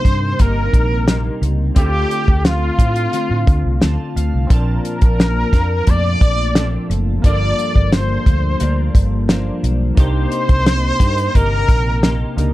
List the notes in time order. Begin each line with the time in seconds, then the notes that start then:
Already playing: C3 G3 A#3 D4 D#4 G4 C5
0.05 G2, kick, closed hi-hat
0.39 G1 C3 G3 A#3 D#4 A#4, kick, closed hi-hat
0.73 A#1, kick, closed hi-hat
1.07 C3 G3 A#3 D#4, snare, closed hi-hat
1.42 C#2, closed hi-hat
1.75 D2 D3 A3 C4 D4 E4 F4 G4, kick, closed hi-hat
1.79 A4
1.85 F4
2.11 closed hi-hat
2.28 D2, kick
2.45 F4, snare, closed hi-hat
2.78 A2 A3 C4 F4, kick, closed hi-hat
2.96 closed hi-hat
3.12 D3 A3 C4 F4, closed hi-hat
3.31 A2
3.47 D2, kick, closed hi-hat
3.65 C2
3.81 D2 D3 A3 C4 F4 A5, snare, closed hi-hat
4.16 D2 F5, closed hi-hat
4.34 C2
4.47 A#1 A#2 F3 C4 D4 F4, kick, closed hi-hat
4.51 D4 A#4 A5
4.85 closed hi-hat
5.01 A#1, kick, closed hi-hat
5.20 snare, closed hi-hat
5.53 F2 F3 D4, kick, snare, closed hi-hat
5.87 F2 A#2 F3 A3 D4 D5, kick, closed hi-hat
6.21 A#1, kick, closed hi-hat
6.55 A#2 F3 A3 C4 D4 F4 A4, snare, closed hi-hat
6.90 F#1, closed hi-hat
7.22 G1 G2 F3 A#3 D4 F4 D5, kick, closed hi-hat
7.26 A#3 D4 A4
7.59 closed hi-hat
7.76 G1, kick
7.92 C5, snare, closed hi-hat
8.26 D2, kick, closed hi-hat
8.60 D2 G2 F3 A#3 D4, closed hi-hat
8.95 G1, kick, closed hi-hat
9.28 G2 F3 A#3 D4 F4 C5, snare, closed hi-hat
9.63 B1, closed hi-hat
9.95 C2 C3 A#3 D4 D#4 C5, kick, closed hi-hat
9.99 G4
10.32 closed hi-hat
10.49 C2, kick, closed hi-hat
10.66 snare, closed hi-hat
11.00 G2 A#3 D#4 G4, kick, closed hi-hat
11.18 closed hi-hat
11.34 G1 C3 A#3 D#4 G4 A#4, kick, closed hi-hat
11.69 A#1, kick, closed hi-hat
12.01 C3 A#3 D#4 G4, snare, closed hi-hat
12.37 C#2 A#3 D4 D#4 A#4, closed hi-hat